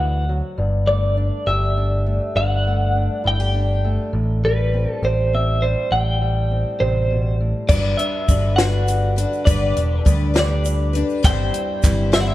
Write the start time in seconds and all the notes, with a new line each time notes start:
Already playing: D2 C4 F#4 F#5
0.00 E3
0.29 F#3
0.58 G1 G2
0.87 A3 D5
1.17 D4
1.47 G1 G4 E5
1.77 D4
2.06 A3
2.36 G1 G2 F#5
2.67 A3
2.96 D4
3.24 G1 E4 G5
3.40 G4
3.54 D4
3.84 A3
4.13 A1 A2
4.44 G3 B4
4.74 C4
4.91 A4
5.03 A1 G4 C5
5.34 C4 E5
5.62 G3 C5
5.91 A1 A2 G5
6.21 G3
6.51 C4
6.80 A1 C3 C5
7.10 B2
7.40 A2
7.68 G1 G2 G3 D4 F#4 B4 D5, kick, crash, shaker
7.97 D4 E5, closed hi-hat
8.28 G1 D3 G3 D4 F#4 B4, kick, closed hi-hat, shaker
8.56 D4 F#4 B4 F#5, snare, closed hi-hat
8.61 G3
8.88 G2, closed hi-hat, shaker
9.16 D4 F#4 B4, closed hi-hat
9.33 shaker
9.45 G1 G2 G3 D4 G4 B4 D5, kick, closed hi-hat, shaker
9.77 E1 D4, closed hi-hat
10.05 D2 D3 G3 D4 G4 B4, kick, closed hi-hat, shaker
10.34 G3 D4 G4 B4, snare, closed hi-hat
10.39 D5
10.65 G2, closed hi-hat, shaker
10.93 D4 G4 B4, closed hi-hat
11.09 shaker
11.23 G1 G3 C4 E4 G4 C5 G5, kick, clap, closed hi-hat, shaker
11.27 C4
11.54 C4, closed hi-hat
11.82 G1 E3 G3 C4 E4 C5, kick, clap, closed hi-hat, shaker
12.12 G3 C4 E4 C5 E5, snare, closed hi-hat
12.21 F#5
12.28 E5, clap